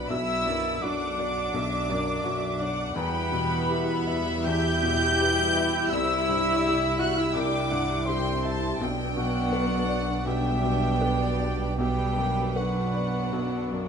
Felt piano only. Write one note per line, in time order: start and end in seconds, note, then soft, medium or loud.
0.00 0.10 B1 medium
0.00 0.13 B2 soft
0.00 0.13 G4 medium
0.00 0.13 D5 medium
0.10 1.50 B1 medium
0.47 1.04 F#2 soft
0.82 1.40 F#4 soft
1.19 1.76 D5 medium
1.54 2.93 B1 medium
1.90 2.47 F#2 medium
2.24 2.82 F#4 medium
2.60 2.97 D5 medium
2.96 4.42 E2 medium
3.32 3.92 B2 medium
3.70 4.31 G4 medium
4.07 4.68 E5 medium
4.47 5.89 E2 medium
4.83 5.42 B2 medium
5.21 5.79 G4 medium
5.57 5.93 E5 medium
5.92 7.32 C2 medium
6.29 6.87 G2 soft
6.66 7.23 G4 medium
7.00 7.58 E5 medium
7.35 8.77 C2 medium
7.72 8.31 G2 medium
8.08 8.67 G4 medium
8.45 8.82 E5 medium
8.81 10.23 B1 medium
9.17 9.76 B2 medium
9.52 10.12 B4 medium
9.88 10.49 D5 medium
10.25 11.74 B1 medium
10.64 11.25 B2 soft
11.01 11.63 B4 medium
11.40 11.79 D5 medium
11.78 13.29 B1 medium
12.17 12.79 F#2 soft
12.56 13.18 B4 medium
12.94 13.56 D5 medium
13.32 13.88 B1 medium
13.71 13.88 F#2 soft